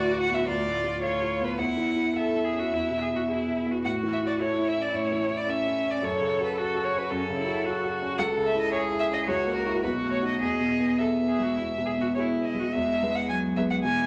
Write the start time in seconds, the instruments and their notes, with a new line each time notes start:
Already playing: grand piano D2 A2 F#4 B4, cello F#4, violin D5
0.12 grand piano F#4
0.21 violin F#5
0.29 grand piano B3
0.34 violin E5
0.47 grand piano D2, cello F4, violin D5
0.67 grand piano A2
0.84 grand piano F4
1.02 cello F4, grand piano A4, violin C#5
1.21 grand piano F4
1.41 grand piano B3, violin B4
1.58 grand piano E2, cello E4, violin F#5
1.77 grand piano E3
1.96 grand piano E4
2.15 grand piano A4, cello A4, violin E5
2.35 grand piano E4
2.44 cello G#4
2.53 grand piano C#4
2.59 cello F#4
2.72 grand piano E2, cello E4
2.91 grand piano B2
3.02 cello G#4
3.10 grand piano E4
3.16 cello F#4
3.29 cello E4, grand piano G#4
3.49 grand piano E4
3.66 grand piano B3
3.71 cello F#4
3.84 grand piano A2, cello F#4, violin F#5
4.03 grand piano E3
4.13 violin E5
4.22 grand piano E4
4.26 violin D5
4.40 cello E4, grand piano A4, violin C#5
4.59 grand piano E4
4.68 violin E5
4.77 grand piano C#4
4.82 violin D5
4.94 grand piano A2, violin C#5
5.12 grand piano E3
5.30 grand piano E4
5.37 violin D5
5.48 cello C#4, grand piano A4, violin E5
5.67 grand piano E4
5.85 grand piano C#4
5.90 violin D5
6.02 grand piano F#2, cello A4, violin C#5
6.21 grand piano C#3
6.40 grand piano F#4
6.45 violin B4
6.58 cello F#4, grand piano A4, violin A4
6.75 grand piano F#4
6.85 violin C#5
6.94 grand piano C#4
6.98 violin B4
7.10 grand piano F#2, cello C#4, violin A4
7.30 grand piano C#3
7.38 cello E4
7.47 grand piano F#4
7.65 cello F#4, grand piano A4
7.84 grand piano F#4
8.02 grand piano C#4
8.18 grand piano C#2, cello A4, violin F#5
8.37 grand piano C#3
8.46 violin E5
8.55 grand piano E4
8.60 violin D#5
8.72 cello G#4, grand piano A4, violin C#5
8.92 grand piano E4
8.99 violin E5
9.11 grand piano C#4, violin D#5
9.26 grand piano C#2, cello F#4, violin C#5
9.47 grand piano A#3
9.55 violin A#4
9.66 grand piano E4 F#4
9.83 grand piano B1, cello F#4, violin B4
10.04 grand piano A3
10.11 violin C#5
10.23 grand piano D#4 F#4, violin D#5
10.39 grand piano E2, cello G#4, violin D#5
10.60 grand piano B2
10.80 grand piano B3
10.98 grand piano G#4, cello A4, violin E5
11.19 grand piano B3
11.28 cello G#4
11.39 grand piano G#3
11.43 cello F#4
11.57 grand piano E2, cello E4
11.78 grand piano B2
11.86 cello G#4
11.97 grand piano B3, cello F#4
12.15 cello E4, grand piano G#4, violin C#5
12.36 grand piano B3
12.43 violin D#5
12.55 grand piano G#3
12.59 cello F#4
12.72 grand piano E2, cello G#3, violin E5
13.03 grand piano G#3 B3 B4
13.15 violin F#5
13.28 cello F#3, violin G#5
13.56 grand piano G#3 B3 B4, violin E5
13.70 violin F#5
13.83 grand piano B2, cello E3, violin G#5